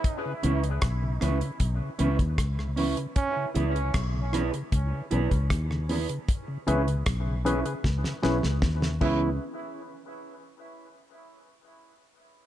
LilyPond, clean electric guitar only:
\new Staff \with { instrumentName = "Clean electric guitar" } { \time 4/4 \key cis \minor \tempo 4 = 77 r8 <cis' e' b'>8 r8 <cis' e' b'>8 r8 <cis' e' b'>8 r8 <cis' e' b'>8 | r8 <e' gis' b'>8 r8 <e' gis' b'>8 r8 <e' gis' b'>8 r8 <e' gis' b'>8 | r8 <cis' e' b'>8 r8 <cis' e' b'>8 r8 <cis' e' b'>8 r8 <cis' e' b'>8 | r1 | }